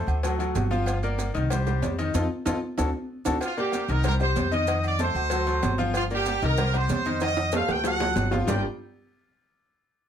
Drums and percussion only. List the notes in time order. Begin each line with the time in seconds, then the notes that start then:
0.08 low agogo, maracas
0.23 cowbell, high conga, low agogo, maracas
0.39 cowbell, high conga, maracas
0.55 cowbell, high conga, low timbale, low agogo, maracas
0.71 high conga, maracas
0.86 cowbell, high conga, low agogo, maracas
1.03 high conga, maracas
1.18 cowbell, high conga, low timbale, low agogo, maracas
1.34 cowbell, high conga, maracas
1.50 cowbell, high conga, low conga, low agogo, maracas
1.67 high conga, low conga, low agogo, maracas
1.82 cowbell, high conga, low timbale, maracas
1.99 cowbell, maracas
2.14 cowbell, high conga, high timbale, maracas
2.46 cowbell, high conga, high timbale, maracas
2.78 cowbell, high conga, high timbale, maracas
3.25 cowbell, high conga, high timbale, maracas
3.41 cowbell, high conga, low agogo, maracas
3.57 high conga, maracas
3.72 cowbell, high conga, low timbale, low agogo, maracas
3.88 cowbell, high conga, maracas
4.04 cowbell, high conga, low conga, low agogo, maracas
4.20 low agogo, maracas
4.36 cowbell, high conga, low timbale, maracas
4.51 cowbell, high conga, maracas
4.67 cowbell, low agogo, maracas
4.83 high conga, low agogo, maracas
4.99 cowbell, high conga, low timbale, maracas
5.15 low agogo, maracas
5.30 cowbell, high conga, low agogo, maracas
5.47 cowbell, high conga, maracas
5.63 cowbell, high conga, low timbale, low agogo, maracas
5.78 high conga, maracas
5.93 cowbell, high conga, low agogo, maracas
6.10 high conga, maracas
6.26 cowbell, high conga, low timbale, low agogo, maracas
6.42 cowbell, high conga, maracas
6.57 cowbell, high conga, low conga, low agogo, maracas
6.74 high conga, low agogo, maracas
6.89 cowbell, high conga, low timbale, maracas
7.05 cowbell, high conga, maracas
7.20 cowbell, high conga, high timbale, low agogo, maracas
7.37 high conga, high timbale, low agogo, maracas
7.52 cowbell, high bongo, high conga, low timbale, maracas
7.68 high bongo, low timbale, low agogo, maracas
7.84 cowbell, low bongo, high conga, low timbale, low agogo, maracas
8.00 cowbell, low bongo, high conga, low timbale, maracas
8.16 cowbell, low bongo, high conga, low timbale, low agogo, maracas
8.31 low bongo, high conga, low timbale, maracas
8.47 low bongo, low conga, low timbale, maracas